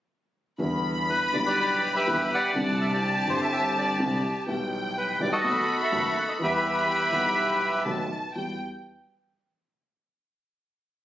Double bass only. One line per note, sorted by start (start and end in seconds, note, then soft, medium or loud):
0.60 1.30 E2 medium
1.34 2.04 B1 medium
2.07 2.28 E2 medium
2.56 3.24 C2 medium
3.29 3.97 G1 medium
4.01 4.21 C2 medium
4.49 5.17 B1 medium
5.22 5.41 B1 medium
5.45 5.65 B1 medium
5.93 6.13 F#1 medium
6.41 7.09 E2 medium
7.13 7.83 B1 medium
7.87 8.07 B1 medium
8.36 8.56 E2 soft